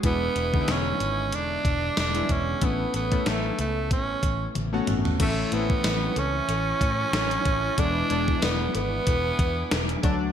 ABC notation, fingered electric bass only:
X:1
M:4/4
L:1/8
Q:"Swing 16ths" 1/4=93
K:A
V:1 name="Fingered electric bass" clef=bass
E,,, E,,, E,,, G,,, E,,, E,,, E,,, E,,, | A,,, A,,, A,,, C,, A,,, A,,, A,,, A,,, | A,,, A,,, A,,, C,, A,,, A,, A,,, A,,, | E,,, E,,, E,,, G,,, E,,, E,, E,,, D,, |]